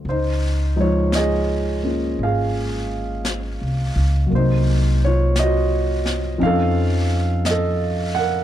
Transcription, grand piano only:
0.09 0.76 D#4 soft
0.09 0.81 C5 medium
0.76 4.31 F3 soft
0.76 4.31 G#3 soft
0.76 4.31 D#4 medium
0.80 1.13 F4 soft
0.80 1.15 C#5 medium
1.15 2.17 G#4 medium
1.15 2.24 D#5 medium
1.83 4.29 A#3 soft
1.83 4.31 C#4 soft
1.83 4.32 F4 soft
2.23 3.94 G#4 medium
2.23 3.93 F5 medium
4.26 6.38 F#3 soft
4.26 6.40 A#3 soft
4.34 6.42 C3 soft
4.34 6.38 D#4 medium
4.34 4.99 C5 medium
5.05 5.37 F4 medium
5.05 5.39 C#5 medium
5.39 6.40 F#4 medium
5.39 6.38 D#5 medium
6.38 8.44 F3 medium
6.38 8.44 C4 soft
6.38 8.44 C#4 soft
6.38 8.44 D#4 medium
6.43 7.44 A4 medium
6.43 7.49 F5 medium
7.46 8.17 D#5 medium
7.51 8.13 A4 medium
8.15 8.44 F#5 medium
8.19 8.44 A#4 medium

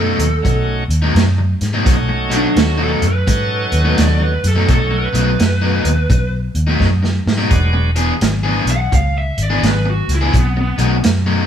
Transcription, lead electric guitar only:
0.00 0.65 A4 medium
2.35 2.57 D4 medium
2.60 2.81 F#4 medium
2.84 3.05 A4 medium
3.08 3.97 B4 medium
4.00 4.21 D5 medium
4.24 4.45 B4 medium
4.47 4.69 A4 medium
4.71 4.92 A4 medium
4.95 6.30 B4 medium
8.71 8.92 F#5 medium
8.95 9.16 F5 medium
9.18 9.40 E5 medium
9.43 9.64 D5 medium
9.67 9.88 B4 medium
9.90 10.11 F#4 medium
10.14 10.35 E4 medium
10.38 10.59 B3 medium
10.61 10.96 B3 loud

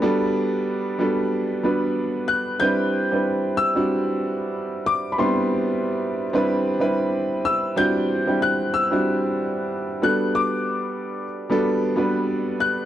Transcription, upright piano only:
0.02 0.93 G3 loud
0.02 0.93 B3 medium
0.02 0.94 D4 loud
0.02 0.94 F#4 medium
0.02 0.94 A4 loud
0.99 1.59 G3 medium
0.99 1.60 B3 medium
0.99 1.60 D4 medium
0.99 1.60 F#4 medium
0.99 1.60 A4 loud
1.63 2.54 G3 medium
1.63 2.55 B3 medium
1.63 2.55 D4 medium
1.63 2.55 F#4 medium
1.63 2.55 B4 medium
2.60 3.07 G3 medium
2.60 3.07 C4 medium
2.60 3.07 D4 medium
2.60 3.08 E4 medium
2.60 3.08 B4 loud
3.12 3.71 G3 medium
3.12 3.71 C4 medium
3.12 3.71 D4 medium
3.12 3.71 E4 medium
3.12 3.71 B4 medium
3.75 4.94 G3 medium
3.75 4.94 C4 medium
3.75 4.95 D4 medium
3.75 4.95 E4 medium
3.75 4.95 F#4 medium
5.18 6.25 G3 medium
5.18 6.26 B3 loud
5.18 6.25 C4 medium
5.18 6.25 D4 medium
5.18 6.25 E4 medium
6.33 6.76 G3 loud
6.33 6.77 C4 medium
6.33 6.77 D4 medium
6.33 6.77 E4 medium
6.33 6.77 B4 loud
6.80 7.71 G3 medium
6.80 7.71 C4 medium
6.80 7.71 D4 medium
6.80 7.71 E4 medium
6.80 7.71 B4 loud
7.76 8.23 G3 medium
7.76 8.23 C4 medium
7.76 8.24 D4 medium
7.76 8.24 E4 medium
7.76 8.24 F#4 loud
8.27 8.86 G3 medium
8.27 8.86 C4 medium
8.27 8.87 D4 medium
8.27 8.87 E4 medium
8.27 8.87 G4 medium
8.91 10.01 G3 medium
8.91 10.02 C4 medium
8.91 10.01 D4 medium
8.91 10.02 E4 medium
8.91 10.02 F#4 medium
10.02 11.24 G3 medium
10.02 11.24 B3 medium
10.02 11.24 D4 medium
10.02 11.24 F#4 medium
10.02 11.25 A4 medium
11.50 11.92 G3 medium
11.50 11.93 B3 medium
11.50 11.93 D4 medium
11.50 11.93 F#4 medium
11.50 11.94 A4 loud
11.96 12.85 G3 medium
11.96 12.85 B3 medium
11.96 12.85 D4 medium
11.96 12.85 F#4 medium
11.96 12.85 B4 medium

